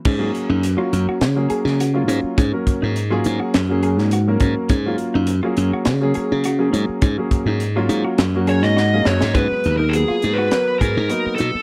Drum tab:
CC |x---------------|----------------|----------------|----------------|
HH |--x-x-x-x-x-x-x-|x-x-x-x-x-x-x-x-|x-x-x-x-x-x-x-x-|x-x-x-x-x-x-----|
SD |--------o--o----|--------o--o----|--------o-------|--------o--oo-oo|
BD |o---------------|o-o-----------o-|o---------------|o-o-------------|

CC |----------------|
HH |x-x-x-x-x-x-x-x-|
SD |--------o-------|
BD |o---------o-----|